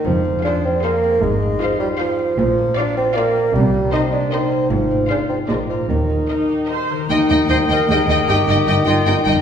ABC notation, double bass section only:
X:1
M:3/4
L:1/8
Q:1/4=154
K:Eb
V:1 name="Double bass section" clef=bass
F,,,2 z4 | A,,,2 z4 | B,,,2 z4 | C,,2 z4 |
A,,,2 z2 B,,,2 | E,,2 z4 | E,, E,, E,, E,, E,, E,, | G,,, G,,, G,,, G,,, G,,, G,,, |]